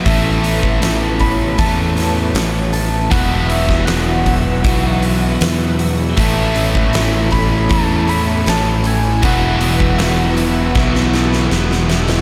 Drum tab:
HH |o-o-o-o-o-o-o-o-|o-o-o-o-o-o-o-o-|o-o-o-o-o-o-o-o-|o-o-o-o---------|
SD |----o-----o-o---|---oo-------o---|----o-------o---|----o---oooooooo|
BD |o--o--o-o-------|o--o--o-o-------|o--o--o-o-------|o--o----o-------|